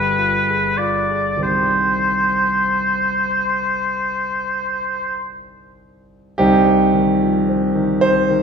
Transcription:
Already playing: G1 F4 G4 G#4 B4
0.18 F4
0.48 G#4
0.78 F4 D5
1.09 G#4
1.37 C2 D#3 C4 G4
1.43 C5
6.38 C2 C4 D#4 G4
6.68 C4
6.94 D#3
7.21 F3
7.49 C4
7.75 D#3
8.01 C4 C5
8.30 D#3

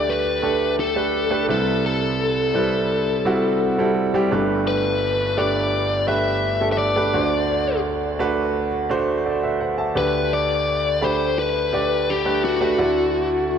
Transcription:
Already playing: D2 D3 A3 D4 G4 B4 D5
0.10 B4
0.42 A3 D4 G4 A4
0.80 A4
0.95 A3 D4 G4 B4
1.30 A3 D4 G4 B4
1.48 C2 C3 G3 C4 E4 A4 B4
1.86 A4
2.54 G3 C4 E4 B4
3.25 G3 C4 E4 F#4
3.78 G3 C4 E4 A4
4.14 G3 C4 E4 G4
4.31 G1 G2 A3 D4 G4 B4
4.67 B4
5.37 A3 D4 G4 B4 D5
6.07 A3 D4 G4 B4 E5
6.60 A3 D4 G4 A4
6.72 E5
6.78 D5
6.96 A3 D4 G4 B4
7.13 D2 D3 A3 D4 F#4 C5
8.19 A3 D4 F#4 B4
8.89 A3 D4 F#4 C5
9.26 A4 D5
9.43 B4 E5
9.61 C5 F#5
9.78 E5 A5
9.95 D2 D3 A3 D4 G4 B4
10.33 D5
11.01 A3 D4 G4 C5 B5
11.39 B4
11.72 A3 D4 G4 D5
12.10 G4
12.25 A3 D4 G4 B4
12.45 F#4
12.61 A3 D4 G4 B4
12.78 D2 D3 A3 E4 F#4 D5

